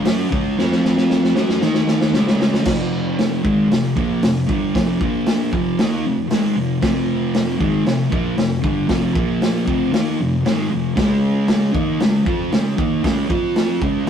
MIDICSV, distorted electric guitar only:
0, 0, Header, 1, 2, 480
1, 0, Start_track
1, 0, Key_signature, -4, "minor"
1, 0, Tempo, 519031
1, 544, Time_signature, 4, 2, 24, 8
1, 13039, End_track
2, 0, Start_track
2, 0, Title_t, "Distorted electric guitar"
2, 0, Program_c, 0, 30
2, 32, Note_on_c, 0, 54, 86
2, 39, Note_on_c, 0, 61, 84
2, 43, Note_on_c, 0, 66, 95
2, 274, Note_off_c, 0, 54, 0
2, 278, Note_on_c, 0, 49, 93
2, 284, Note_off_c, 0, 61, 0
2, 286, Note_off_c, 0, 66, 0
2, 289, Note_on_c, 0, 56, 101
2, 294, Note_on_c, 0, 61, 100
2, 524, Note_off_c, 0, 49, 0
2, 530, Note_off_c, 0, 56, 0
2, 532, Note_off_c, 0, 61, 0
2, 539, Note_on_c, 0, 53, 90
2, 546, Note_on_c, 0, 60, 100
2, 549, Note_on_c, 0, 65, 100
2, 1250, Note_off_c, 0, 53, 0
2, 1254, Note_on_c, 0, 54, 86
2, 1255, Note_off_c, 0, 60, 0
2, 1259, Note_on_c, 0, 61, 94
2, 1260, Note_off_c, 0, 65, 0
2, 1269, Note_on_c, 0, 66, 99
2, 1492, Note_off_c, 0, 54, 0
2, 1494, Note_off_c, 0, 61, 0
2, 1496, Note_on_c, 0, 51, 91
2, 1500, Note_off_c, 0, 66, 0
2, 1504, Note_on_c, 0, 58, 100
2, 1517, Note_on_c, 0, 63, 107
2, 1974, Note_off_c, 0, 51, 0
2, 1978, Note_off_c, 0, 58, 0
2, 1984, Note_off_c, 0, 63, 0
2, 1986, Note_on_c, 0, 49, 85
2, 1995, Note_on_c, 0, 56, 86
2, 2001, Note_on_c, 0, 61, 101
2, 2448, Note_off_c, 0, 49, 0
2, 2448, Note_on_c, 0, 41, 91
2, 2452, Note_on_c, 0, 48, 95
2, 2454, Note_off_c, 0, 56, 0
2, 2458, Note_on_c, 0, 53, 100
2, 2467, Note_off_c, 0, 61, 0
2, 3171, Note_off_c, 0, 41, 0
2, 3173, Note_off_c, 0, 48, 0
2, 3175, Note_on_c, 0, 44, 96
2, 3176, Note_off_c, 0, 53, 0
2, 3185, Note_on_c, 0, 51, 98
2, 3189, Note_on_c, 0, 56, 100
2, 3411, Note_off_c, 0, 44, 0
2, 3414, Note_on_c, 0, 41, 65
2, 3418, Note_off_c, 0, 51, 0
2, 3421, Note_off_c, 0, 56, 0
2, 3422, Note_on_c, 0, 48, 74
2, 3613, Note_off_c, 0, 41, 0
2, 3617, Note_off_c, 0, 48, 0
2, 3661, Note_on_c, 0, 46, 84
2, 3665, Note_on_c, 0, 53, 93
2, 3673, Note_on_c, 0, 58, 100
2, 3898, Note_off_c, 0, 46, 0
2, 3900, Note_off_c, 0, 53, 0
2, 3904, Note_off_c, 0, 58, 0
2, 3909, Note_on_c, 0, 41, 57
2, 3909, Note_on_c, 0, 48, 64
2, 4101, Note_off_c, 0, 41, 0
2, 4101, Note_off_c, 0, 48, 0
2, 4135, Note_on_c, 0, 43, 87
2, 4145, Note_on_c, 0, 50, 89
2, 4153, Note_on_c, 0, 55, 110
2, 4375, Note_off_c, 0, 43, 0
2, 4380, Note_off_c, 0, 50, 0
2, 4384, Note_off_c, 0, 55, 0
2, 4390, Note_on_c, 0, 41, 86
2, 4400, Note_on_c, 0, 48, 86
2, 4407, Note_on_c, 0, 53, 85
2, 4623, Note_off_c, 0, 41, 0
2, 4623, Note_off_c, 0, 48, 0
2, 4623, Note_off_c, 0, 53, 0
2, 4626, Note_on_c, 0, 46, 83
2, 4634, Note_on_c, 0, 53, 96
2, 4646, Note_on_c, 0, 58, 100
2, 5102, Note_off_c, 0, 46, 0
2, 5104, Note_on_c, 0, 41, 93
2, 5106, Note_off_c, 0, 53, 0
2, 5112, Note_off_c, 0, 58, 0
2, 5118, Note_on_c, 0, 48, 95
2, 5124, Note_on_c, 0, 53, 91
2, 5341, Note_off_c, 0, 41, 0
2, 5347, Note_off_c, 0, 48, 0
2, 5350, Note_off_c, 0, 53, 0
2, 5356, Note_on_c, 0, 51, 91
2, 5364, Note_on_c, 0, 58, 96
2, 5370, Note_on_c, 0, 63, 105
2, 5587, Note_off_c, 0, 51, 0
2, 5591, Note_off_c, 0, 58, 0
2, 5594, Note_off_c, 0, 63, 0
2, 5595, Note_on_c, 0, 41, 66
2, 5605, Note_on_c, 0, 48, 66
2, 5786, Note_off_c, 0, 41, 0
2, 5790, Note_off_c, 0, 48, 0
2, 5833, Note_on_c, 0, 44, 75
2, 5837, Note_on_c, 0, 51, 80
2, 5851, Note_on_c, 0, 56, 97
2, 6060, Note_off_c, 0, 44, 0
2, 6062, Note_off_c, 0, 51, 0
2, 6063, Note_on_c, 0, 41, 62
2, 6065, Note_on_c, 0, 48, 74
2, 6075, Note_off_c, 0, 56, 0
2, 6260, Note_off_c, 0, 41, 0
2, 6261, Note_off_c, 0, 48, 0
2, 6298, Note_on_c, 0, 41, 93
2, 6306, Note_on_c, 0, 48, 91
2, 6306, Note_on_c, 0, 53, 101
2, 7017, Note_off_c, 0, 41, 0
2, 7021, Note_on_c, 0, 44, 93
2, 7023, Note_off_c, 0, 48, 0
2, 7023, Note_off_c, 0, 53, 0
2, 7029, Note_on_c, 0, 51, 98
2, 7033, Note_on_c, 0, 56, 98
2, 7260, Note_off_c, 0, 44, 0
2, 7264, Note_off_c, 0, 51, 0
2, 7266, Note_off_c, 0, 56, 0
2, 7267, Note_on_c, 0, 41, 58
2, 7274, Note_on_c, 0, 48, 70
2, 7462, Note_off_c, 0, 41, 0
2, 7466, Note_off_c, 0, 48, 0
2, 7487, Note_on_c, 0, 46, 95
2, 7501, Note_on_c, 0, 53, 89
2, 7505, Note_on_c, 0, 58, 102
2, 7727, Note_on_c, 0, 41, 59
2, 7733, Note_off_c, 0, 46, 0
2, 7739, Note_on_c, 0, 48, 76
2, 7740, Note_off_c, 0, 53, 0
2, 7742, Note_off_c, 0, 58, 0
2, 7932, Note_off_c, 0, 41, 0
2, 7938, Note_off_c, 0, 48, 0
2, 7979, Note_on_c, 0, 43, 90
2, 7989, Note_on_c, 0, 50, 94
2, 7995, Note_on_c, 0, 55, 101
2, 8204, Note_off_c, 0, 43, 0
2, 8208, Note_on_c, 0, 41, 87
2, 8214, Note_off_c, 0, 50, 0
2, 8218, Note_on_c, 0, 48, 93
2, 8219, Note_off_c, 0, 55, 0
2, 8223, Note_on_c, 0, 53, 95
2, 8452, Note_off_c, 0, 53, 0
2, 8454, Note_off_c, 0, 41, 0
2, 8454, Note_off_c, 0, 48, 0
2, 8457, Note_on_c, 0, 46, 83
2, 8463, Note_on_c, 0, 53, 97
2, 8468, Note_on_c, 0, 58, 98
2, 8925, Note_on_c, 0, 41, 82
2, 8927, Note_off_c, 0, 46, 0
2, 8931, Note_on_c, 0, 48, 94
2, 8932, Note_off_c, 0, 53, 0
2, 8943, Note_on_c, 0, 53, 106
2, 8944, Note_off_c, 0, 58, 0
2, 9172, Note_off_c, 0, 41, 0
2, 9173, Note_off_c, 0, 48, 0
2, 9176, Note_on_c, 0, 51, 85
2, 9178, Note_off_c, 0, 53, 0
2, 9182, Note_on_c, 0, 58, 101
2, 9183, Note_on_c, 0, 63, 97
2, 9417, Note_off_c, 0, 51, 0
2, 9420, Note_off_c, 0, 58, 0
2, 9421, Note_off_c, 0, 63, 0
2, 9428, Note_on_c, 0, 41, 66
2, 9440, Note_on_c, 0, 48, 75
2, 9622, Note_off_c, 0, 41, 0
2, 9629, Note_off_c, 0, 48, 0
2, 9674, Note_on_c, 0, 44, 82
2, 9681, Note_on_c, 0, 51, 83
2, 9690, Note_on_c, 0, 56, 97
2, 9895, Note_off_c, 0, 44, 0
2, 9898, Note_on_c, 0, 41, 60
2, 9900, Note_off_c, 0, 51, 0
2, 9904, Note_on_c, 0, 48, 67
2, 9914, Note_off_c, 0, 56, 0
2, 10097, Note_off_c, 0, 41, 0
2, 10100, Note_off_c, 0, 48, 0
2, 10131, Note_on_c, 0, 49, 87
2, 10138, Note_on_c, 0, 56, 98
2, 10147, Note_on_c, 0, 61, 87
2, 10844, Note_off_c, 0, 49, 0
2, 10847, Note_on_c, 0, 51, 88
2, 10853, Note_off_c, 0, 56, 0
2, 10857, Note_on_c, 0, 58, 89
2, 10859, Note_off_c, 0, 61, 0
2, 10863, Note_on_c, 0, 63, 98
2, 11091, Note_off_c, 0, 51, 0
2, 11096, Note_off_c, 0, 58, 0
2, 11099, Note_off_c, 0, 63, 0
2, 11102, Note_on_c, 0, 49, 66
2, 11108, Note_on_c, 0, 56, 65
2, 11298, Note_off_c, 0, 49, 0
2, 11301, Note_off_c, 0, 56, 0
2, 11330, Note_on_c, 0, 53, 89
2, 11342, Note_on_c, 0, 60, 93
2, 11351, Note_on_c, 0, 65, 98
2, 11572, Note_off_c, 0, 53, 0
2, 11573, Note_off_c, 0, 60, 0
2, 11577, Note_on_c, 0, 56, 60
2, 11578, Note_on_c, 0, 49, 61
2, 11583, Note_off_c, 0, 65, 0
2, 11775, Note_off_c, 0, 56, 0
2, 11776, Note_off_c, 0, 49, 0
2, 11808, Note_on_c, 0, 51, 93
2, 11815, Note_on_c, 0, 58, 94
2, 11820, Note_on_c, 0, 63, 103
2, 12043, Note_off_c, 0, 51, 0
2, 12047, Note_on_c, 0, 49, 85
2, 12053, Note_off_c, 0, 58, 0
2, 12056, Note_on_c, 0, 56, 91
2, 12057, Note_off_c, 0, 63, 0
2, 12064, Note_on_c, 0, 61, 98
2, 12276, Note_off_c, 0, 49, 0
2, 12279, Note_on_c, 0, 53, 83
2, 12283, Note_off_c, 0, 56, 0
2, 12286, Note_on_c, 0, 60, 90
2, 12294, Note_off_c, 0, 61, 0
2, 12298, Note_on_c, 0, 65, 103
2, 12766, Note_off_c, 0, 53, 0
2, 12769, Note_off_c, 0, 60, 0
2, 12770, Note_on_c, 0, 49, 96
2, 12775, Note_off_c, 0, 65, 0
2, 12778, Note_on_c, 0, 56, 100
2, 12784, Note_on_c, 0, 61, 114
2, 13003, Note_off_c, 0, 49, 0
2, 13007, Note_on_c, 0, 46, 88
2, 13013, Note_off_c, 0, 56, 0
2, 13017, Note_off_c, 0, 61, 0
2, 13039, Note_off_c, 0, 46, 0
2, 13039, End_track
0, 0, End_of_file